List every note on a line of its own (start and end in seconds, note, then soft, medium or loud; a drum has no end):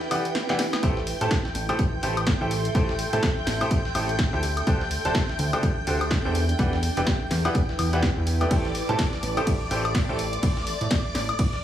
0.00 2.00 E4 loud
0.00 0.83 B4 medium
0.00 0.82 G5 medium
0.00 2.18 G5 medium
0.00 0.82 G6 medium
0.00 snare medium
0.11 0.23 E3 medium
0.11 0.23 E4 medium
0.11 0.23 G4 medium
0.11 0.23 B4 medium
0.11 0.23 D5 medium
0.11 0.23 F#5 loud
0.11 closed hi-hat medium
0.11 open hi-hat loud
0.11 high woodblock medium
0.25 closed hi-hat medium
0.35 snare medium
0.35 snare loud
0.35 closed hi-hat medium
0.49 0.58 E3 medium
0.49 0.58 E4 medium
0.49 0.58 G4 medium
0.49 0.58 B4 medium
0.49 0.58 D5 medium
0.49 0.58 F#5 loud
0.49 snare medium
0.59 snare medium
0.59 closed hi-hat medium
0.59 open hi-hat loud
0.73 snare medium
0.73 snare soft
0.73 closed hi-hat medium
0.73 high woodblock medium
0.83 1.14 A1 loud
0.83 0.95 A3 loud
0.83 0.95 E4 medium
0.83 0.95 G4 medium
0.83 0.95 A4 medium
0.83 7.02 A4 medium
0.83 0.95 C5 medium
0.83 0.95 G5 loud
0.83 8.52 G5 medium
0.83 8.52 G6 medium
0.83 kick loud
0.83 closed hi-hat medium
0.97 5.21 C6 medium
0.97 snare soft
1.02 7.23 E5 medium
1.07 closed hi-hat medium
1.07 open hi-hat loud
1.21 1.28 A2 medium
1.21 1.30 A3 medium
1.21 1.30 E4 medium
1.21 1.30 G4 medium
1.21 1.30 A4 medium
1.21 1.30 C5 medium
1.21 1.30 A5 loud
1.21 closed hi-hat medium
1.31 kick loud
1.31 snare loud
1.31 closed hi-hat medium
1.45 snare medium
1.55 1.72 A1 medium
1.55 closed hi-hat medium
1.55 open hi-hat loud
1.69 1.78 A3 medium
1.69 1.78 E4 medium
1.69 1.78 G4 medium
1.69 1.78 A4 medium
1.69 1.78 C5 medium
1.69 1.78 G5 loud
1.69 closed hi-hat medium
1.69 high woodblock medium
1.79 1.88 A1 medium
1.79 kick loud
1.79 closed hi-hat medium
2.03 2.34 A1 loud
2.03 2.15 A3 medium
2.03 2.15 E4 medium
2.03 2.15 G4 medium
2.03 2.15 A4 medium
2.03 2.15 C5 medium
2.03 2.15 G5 loud
2.03 closed hi-hat medium
2.03 open hi-hat loud
2.17 closed hi-hat medium
2.17 high woodblock medium
2.27 kick loud
2.27 snare loud
2.27 closed hi-hat medium
2.41 2.70 A1 loud
2.41 2.50 A3 medium
2.41 2.50 E4 medium
2.41 2.50 G4 medium
2.41 2.50 A4 medium
2.41 2.50 C5 medium
2.41 2.50 G5 loud
2.51 closed hi-hat medium
2.51 open hi-hat loud
2.65 closed hi-hat medium
2.75 3.06 A1 loud
2.75 2.87 A3 loud
2.75 2.87 E4 medium
2.75 2.87 G4 medium
2.75 2.87 A4 medium
2.75 2.87 C5 medium
2.75 2.87 G5 loud
2.75 kick loud
2.75 closed hi-hat medium
2.89 snare medium
2.99 closed hi-hat medium
2.99 open hi-hat loud
3.13 3.20 A2 medium
3.13 3.22 A3 medium
3.13 3.22 E4 medium
3.13 3.22 G4 medium
3.13 3.22 A4 medium
3.13 3.22 C5 medium
3.13 3.22 A5 loud
3.13 closed hi-hat medium
3.23 kick loud
3.23 snare loud
3.23 closed hi-hat medium
3.47 3.64 A1 loud
3.47 snare medium
3.47 open hi-hat medium
3.47 open hi-hat loud
3.61 3.70 A3 medium
3.61 3.70 E4 medium
3.61 3.70 G4 medium
3.61 3.70 A4 medium
3.61 3.70 C5 medium
3.61 3.70 G5 loud
3.61 closed hi-hat medium
3.61 high woodblock medium
3.71 3.80 A1 loud
3.71 kick loud
3.71 closed hi-hat medium
3.85 snare medium
3.95 4.26 A1 loud
3.95 4.07 A3 medium
3.95 4.07 E4 medium
3.95 4.07 G4 medium
3.95 4.07 A4 medium
3.95 4.07 C5 medium
3.95 4.07 G5 loud
3.95 closed hi-hat medium
3.95 open hi-hat loud
3.95 high woodblock medium
4.09 closed hi-hat medium
4.19 kick loud
4.19 snare loud
4.19 closed hi-hat medium
4.33 4.62 D2 loud
4.33 4.42 E4 medium
4.33 4.42 G4 medium
4.33 4.42 A4 medium
4.33 4.42 C5 medium
4.33 4.42 G5 loud
4.43 7.23 D4 medium
4.43 closed hi-hat medium
4.43 open hi-hat loud
4.57 closed hi-hat medium
4.57 high woodblock medium
4.64 4.98 D2 loud
4.64 4.79 D3 loud
4.64 4.79 D4 medium
4.64 4.79 G4 medium
4.64 4.79 A4 medium
4.64 4.79 C5 medium
4.64 9.29 G5 medium
4.64 4.79 G5 loud
4.64 kick loud
4.64 closed hi-hat medium
4.81 snare soft
4.91 closed hi-hat medium
4.91 open hi-hat loud
5.05 5.12 D1 medium
5.05 5.14 D3 medium
5.05 5.14 D4 medium
5.05 5.14 G4 medium
5.05 5.14 A4 medium
5.05 5.14 C5 medium
5.05 5.14 A5 loud
5.05 closed hi-hat medium
5.15 kick loud
5.15 snare loud
5.15 closed hi-hat medium
5.29 snare medium
5.39 5.56 D2 loud
5.39 closed hi-hat medium
5.39 open hi-hat loud
5.53 5.62 D3 medium
5.53 5.62 D4 medium
5.53 5.62 G4 medium
5.53 5.62 A4 medium
5.53 5.62 C5 medium
5.53 5.62 G5 loud
5.53 closed hi-hat medium
5.53 high woodblock medium
5.63 5.72 D2 medium
5.63 kick loud
5.63 closed hi-hat medium
5.87 6.18 D2 loud
5.87 5.99 D3 medium
5.87 5.99 D4 medium
5.87 5.99 G4 medium
5.87 5.99 A4 medium
5.87 5.99 C5 medium
5.87 5.99 G5 loud
5.87 closed hi-hat medium
5.87 open hi-hat loud
6.01 closed hi-hat medium
6.01 high woodblock medium
6.11 kick loud
6.11 snare loud
6.11 closed hi-hat medium
6.25 6.54 E2 loud
6.25 6.34 E3 medium
6.25 6.34 D4 medium
6.25 6.34 G4 medium
6.25 6.34 A4 medium
6.25 6.34 C5 medium
6.25 6.34 G5 loud
6.35 9.23 E4 medium
6.35 closed hi-hat medium
6.35 open hi-hat loud
6.46 8.51 B4 medium
6.46 closed hi-hat soft
6.59 6.90 E2 loud
6.59 6.71 E3 loud
6.59 6.71 E4 medium
6.59 6.71 G4 medium
6.59 6.71 B4 medium
6.59 6.71 D5 medium
6.59 6.71 F#5 loud
6.59 kick loud
6.59 closed hi-hat medium
6.73 snare medium
6.83 closed hi-hat medium
6.83 open hi-hat loud
6.97 7.04 E1 medium
6.97 7.06 E3 medium
6.97 7.06 E4 medium
6.97 7.06 G4 medium
6.97 7.06 B4 medium
6.97 7.06 D5 medium
6.97 7.06 G5 loud
6.97 closed hi-hat medium
7.07 kick loud
7.07 snare loud
7.07 closed hi-hat medium
7.31 7.48 E2 loud
7.31 snare medium
7.31 open hi-hat medium
7.31 open hi-hat loud
7.45 7.54 E3 loud
7.45 7.54 E4 medium
7.45 7.54 G4 medium
7.45 7.54 B4 medium
7.45 7.54 D5 medium
7.45 7.54 F#5 loud
7.45 closed hi-hat soft
7.45 high woodblock medium
7.55 7.64 E2 loud
7.55 kick loud
7.55 closed hi-hat medium
7.69 snare soft
7.79 8.10 E2 loud
7.79 closed hi-hat medium
7.79 open hi-hat loud
7.79 high woodblock medium
7.93 8.02 E3 medium
7.93 8.02 E4 medium
7.93 8.02 G4 medium
7.93 8.02 B4 medium
7.93 8.02 D5 medium
7.93 8.02 F#5 loud
7.93 closed hi-hat medium
8.03 kick loud
8.03 snare loud
8.03 closed hi-hat medium
8.17 8.46 E2 loud
8.27 closed hi-hat medium
8.27 open hi-hat loud
8.41 8.49 A3 medium
8.41 8.49 E4 medium
8.41 8.49 G4 medium
8.41 8.49 B4 medium
8.41 8.49 D5 medium
8.41 8.49 G5 medium
8.41 closed hi-hat medium
8.41 high woodblock medium
8.51 8.82 A1 loud
8.51 8.63 A3 loud
8.51 8.63 E4 medium
8.51 8.63 G4 medium
8.51 8.63 A4 medium
8.51 10.43 A4 medium
8.51 8.63 C5 medium
8.51 11.64 D5 medium
8.51 8.63 G5 loud
8.51 11.64 D6 medium
8.51 kick loud
8.51 closed hi-hat medium
8.51 ride medium
8.65 10.43 E5 medium
8.65 snare soft
8.69 10.43 C6 medium
8.75 closed hi-hat medium
8.75 open hi-hat loud
8.89 8.96 A2 medium
8.89 8.98 A3 medium
8.89 8.98 E4 medium
8.89 8.98 G4 medium
8.89 8.98 A4 medium
8.89 8.98 C5 medium
8.89 8.98 A5 loud
8.89 closed hi-hat medium
8.99 kick loud
8.99 snare loud
8.99 closed hi-hat medium
8.99 ride medium
9.13 snare medium
9.23 9.40 A1 loud
9.23 closed hi-hat medium
9.23 open hi-hat loud
9.37 9.46 A3 medium
9.37 9.46 E4 medium
9.37 9.46 G4 medium
9.37 9.46 A4 medium
9.37 9.46 C5 medium
9.37 9.46 G5 loud
9.37 closed hi-hat soft
9.37 high woodblock medium
9.47 9.56 A1 medium
9.47 kick loud
9.47 closed hi-hat medium
9.47 ride medium
9.71 10.02 A1 loud
9.71 9.83 A3 medium
9.71 9.83 E4 medium
9.71 9.83 G4 medium
9.71 9.83 A4 medium
9.71 9.83 C5 medium
9.71 9.83 G5 loud
9.71 closed hi-hat medium
9.71 open hi-hat loud
9.85 closed hi-hat soft
9.85 high woodblock medium
9.95 kick loud
9.95 snare loud
9.95 closed hi-hat medium
9.95 ride medium
10.09 10.38 A1 loud
10.09 10.18 A3 medium
10.09 10.18 E4 medium
10.09 10.18 G4 medium
10.09 10.18 A4 medium
10.09 10.18 C5 medium
10.09 10.18 G5 loud
10.19 closed hi-hat medium
10.19 open hi-hat loud
10.33 closed hi-hat medium
10.43 10.74 A1 loud
10.43 kick loud
10.43 closed hi-hat medium
10.43 ride medium
10.57 snare medium
10.67 closed hi-hat medium
10.67 open hi-hat loud
10.81 10.88 A2 medium
10.81 closed hi-hat medium
10.91 kick loud
10.91 snare loud
10.91 closed hi-hat medium
10.91 ride medium
11.15 11.32 A1 loud
11.15 snare medium
11.15 open hi-hat medium
11.15 open hi-hat loud
11.29 closed hi-hat soft
11.29 high woodblock medium
11.39 11.48 A1 medium
11.39 kick loud
11.39 closed hi-hat medium
11.39 ride medium
11.53 snare soft